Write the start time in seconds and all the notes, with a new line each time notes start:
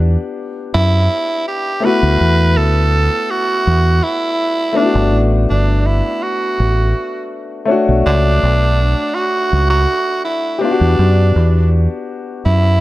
Already playing: E2 B3 D4 G4 F#5
0.74 F#2 E4
1.48 G4
1.80 A3 B3
1.84 E4 F#4 B4
2.03 D2
2.21 E2
2.57 D2 A4
3.31 F#4
3.67 E2
4.03 E4
4.73 A3 B3
4.77 D4 E4
4.85 F#4
4.95 G1
5.14 A1
5.50 G1 D4
5.87 E4
6.23 F#4
6.60 A1
7.65 A3 C#5
7.69 D4 F#4
7.89 B1
8.06 C#2 D4
8.43 B1
9.15 F#4
9.53 C#2
9.70 F#4
10.25 E4
10.59 B3 D4 G4
10.63 D4 F4
10.71 F#4
10.81 E2
10.99 F#2
11.36 E2
12.46 F#2 E4